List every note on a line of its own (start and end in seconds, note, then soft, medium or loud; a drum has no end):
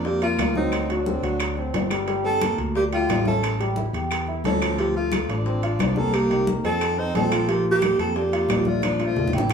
0.00 0.35 F2 medium
0.05 0.21 A#3 medium
0.05 0.19 D4 medium
0.05 0.22 G4 medium
0.05 0.19 D5 medium
0.05 high bongo medium
0.05 high conga soft
0.22 0.53 A#3 medium
0.22 0.50 F4 medium
0.22 0.54 F4 medium
0.22 0.50 F5 medium
0.22 high bongo soft
0.22 high conga soft
0.22 high timbale medium
0.38 1.17 D2 medium
0.38 high bongo soft
0.38 low bongo medium
0.38 high conga medium
0.38 high timbale loud
0.38 low timbale medium
0.38 claves medium
0.55 0.87 F#3 medium
0.55 0.83 C4 medium
0.55 0.87 D#4 medium
0.55 0.84 C5 medium
0.55 high bongo soft
0.55 high conga medium
0.72 high bongo medium
0.72 high timbale medium
0.72 claves medium
0.89 1.03 F#3 medium
0.89 1.87 F#3 medium
0.89 1.88 D4 medium
0.89 1.03 F#4 medium
0.89 high bongo soft
0.89 high conga soft
0.89 high timbale medium
1.06 1.20 C4 medium
1.06 1.20 C5 medium
1.06 high bongo medium
1.06 high conga medium
1.06 low timbale medium
1.23 1.70 D2 medium
1.23 1.51 F#4 medium
1.23 1.51 F#5 medium
1.23 high conga soft
1.23 high timbale medium
1.40 high bongo medium
1.40 high conga soft
1.40 high timbale loud
1.40 claves medium
1.57 1.85 C4 medium
1.57 1.85 C5 medium
1.57 high bongo soft
1.57 high conga soft
1.73 2.53 G1 medium
1.73 high bongo soft
1.73 low bongo medium
1.73 high conga medium
1.73 high timbale medium
1.73 low timbale medium
1.91 2.05 G3 medium
1.91 2.05 G4 medium
1.91 high bongo soft
1.91 high conga soft
1.91 high timbale medium
1.91 claves medium
2.07 2.35 G3 medium
2.07 2.36 G4 medium
2.07 high bongo medium
2.07 high conga soft
2.07 high timbale medium
2.24 2.56 C4 medium
2.24 2.56 A4 loud
2.24 high bongo soft
2.24 high conga soft
2.41 2.69 A#3 medium
2.41 2.70 A#4 medium
2.41 high bongo medium
2.41 high conga loud
2.41 high timbale medium
2.41 low timbale medium
2.41 claves medium
2.58 3.06 D2 medium
2.58 high timbale medium
2.75 2.83 A#3 medium
2.75 2.89 D4 medium
2.75 2.84 G4 medium
2.75 2.89 D5 medium
2.75 high bongo medium
2.75 high conga soft
2.92 3.24 A3 medium
2.92 3.25 F4 medium
2.92 3.20 G4 medium
2.92 3.20 G5 medium
2.92 high bongo soft
2.92 high conga soft
2.92 high timbale medium
3.09 3.88 A1 medium
3.09 high bongo soft
3.09 low bongo medium
3.09 high conga medium
3.09 high timbale medium
3.09 low timbale medium
3.09 claves medium
3.25 3.58 C#4 medium
3.25 3.54 E4 medium
3.25 3.58 A4 medium
3.25 3.54 E5 medium
3.25 high bongo soft
3.25 high conga medium
3.43 high bongo medium
3.43 high conga soft
3.43 high timbale medium
3.43 claves medium
3.60 3.74 G3 medium
3.60 3.74 G4 medium
3.60 high bongo soft
3.60 high conga soft
3.60 high timbale medium
3.76 3.91 E4 medium
3.76 3.91 E5 medium
3.76 high bongo medium
3.76 high conga medium
3.76 low timbale medium
3.93 4.41 E2 medium
3.93 4.22 G4 medium
3.93 4.22 G5 medium
3.93 high conga soft
3.93 high timbale medium
4.10 high bongo medium
4.10 high conga soft
4.10 high timbale medium
4.10 claves medium
4.27 4.56 E4 medium
4.27 4.56 E5 medium
4.27 high bongo soft
4.27 high conga soft
4.44 5.23 D2 medium
4.44 4.76 C#4 medium
4.44 4.76 A4 medium
4.44 high bongo soft
4.44 low bongo medium
4.44 high conga medium
4.44 high timbale medium
4.44 low timbale medium
4.61 4.75 F3 medium
4.61 4.75 F4 medium
4.61 high bongo soft
4.61 high conga soft
4.61 high timbale loud
4.61 claves medium
4.78 5.06 F3 medium
4.78 4.94 C4 medium
4.78 5.06 F4 medium
4.78 4.95 G4 medium
4.78 high bongo medium
4.78 high conga soft
4.78 high timbale medium
4.95 5.27 A3 medium
4.95 5.27 F4 medium
4.95 high bongo soft
4.95 high conga soft
5.12 5.40 A3 medium
5.12 5.40 A4 medium
5.12 high bongo medium
5.12 high conga medium
5.12 high timbale medium
5.12 low timbale medium
5.12 claves medium
5.29 5.76 A1 medium
5.29 5.98 F3 medium
5.29 5.99 D4 medium
5.29 high timbale medium
5.45 5.60 C4 medium
5.45 5.60 C5 medium
5.45 high bongo medium
5.45 high conga soft
5.62 5.91 F4 medium
5.62 5.91 F5 medium
5.62 high bongo soft
5.62 high conga soft
5.62 high timbale medium
5.79 6.58 C2 medium
5.79 high bongo soft
5.79 low bongo medium
5.79 high conga medium
5.79 high timbale medium
5.79 low timbale medium
5.79 claves medium
5.96 6.24 A#3 medium
5.96 6.14 C4 medium
5.96 6.16 A4 loud
5.96 6.24 A#4 medium
5.96 high bongo soft
5.96 high conga medium
6.13 6.47 A#3 medium
6.13 6.48 G4 medium
6.13 high bongo medium
6.13 high conga soft
6.13 high timbale medium
6.13 claves medium
6.30 6.44 D#3 medium
6.30 6.44 D#4 medium
6.30 high bongo soft
6.30 high conga soft
6.30 high timbale medium
6.47 6.61 A#3 medium
6.47 6.61 A#4 medium
6.47 high bongo medium
6.47 high conga medium
6.47 low timbale medium
6.64 7.11 F2 medium
6.64 6.99 C4 medium
6.64 6.92 D#4 medium
6.64 7.00 A4 loud
6.64 6.92 D#5 medium
6.64 high conga soft
6.64 high timbale medium
6.81 high bongo medium
6.81 high conga soft
6.81 high timbale medium
6.81 claves medium
6.98 7.26 C4 medium
6.98 7.14 D#4 medium
6.98 7.15 C5 medium
6.98 7.26 C5 medium
6.98 high bongo soft
6.98 high conga soft
7.14 7.93 A#1 medium
7.14 7.50 C4 medium
7.14 7.50 A4 medium
7.14 high bongo soft
7.14 low bongo medium
7.14 high conga medium
7.14 high timbale medium
7.14 low timbale medium
7.32 7.45 F3 medium
7.32 7.46 F4 medium
7.32 high bongo soft
7.32 high timbale loud
7.32 claves medium
7.48 7.76 F3 medium
7.48 7.65 A#3 medium
7.48 7.76 F4 medium
7.48 7.65 G4 medium
7.48 high bongo medium
7.48 high conga soft
7.48 high timbale medium
7.65 high bongo soft
7.65 high conga soft
7.71 7.97 A#3 medium
7.71 7.97 G4 medium
7.82 8.10 A#3 medium
7.82 8.10 A#4 medium
7.82 high bongo medium
7.82 high conga medium
7.82 high timbale medium
7.82 low timbale medium
7.82 claves medium
7.98 8.46 F2 medium
7.98 8.18 C4 medium
7.98 8.18 A4 medium
7.98 high timbale medium
8.15 8.68 A#3 medium
8.15 8.29 D4 medium
8.15 8.68 G4 medium
8.15 8.30 D5 medium
8.15 high bongo medium
8.15 high conga soft
8.32 8.60 F4 medium
8.32 8.60 F5 medium
8.32 high bongo soft
8.32 high conga soft
8.32 high timbale medium
8.49 9.28 A#1 medium
8.49 high bongo soft
8.49 low bongo medium
8.49 high conga medium
8.49 high timbale medium
8.49 low timbale medium
8.49 claves medium
8.65 8.83 A3 medium
8.65 8.94 D4 medium
8.65 8.83 F4 medium
8.65 8.94 D5 medium
8.65 high bongo soft
8.65 high conga medium
8.82 9.07 F3 medium
8.82 9.08 D4 medium
8.82 high bongo medium
8.82 high conga medium
8.82 high timbale medium
8.82 claves medium
9.00 9.14 F3 medium
9.00 9.14 F4 medium
9.00 high bongo soft
9.00 high timbale medium
9.06 9.33 A3 medium
9.06 9.34 F4 medium
9.16 9.30 D4 medium
9.16 9.31 D5 medium
9.16 high bongo medium
9.16 low conga medium
9.16 low timbale medium
9.27 low conga medium
9.33 9.53 A1 medium
9.33 9.53 G3 medium
9.33 9.53 E4 medium
9.33 9.53 G4 medium
9.33 9.53 G5 medium
9.33 high timbale medium
9.38 low conga medium
9.49 low conga medium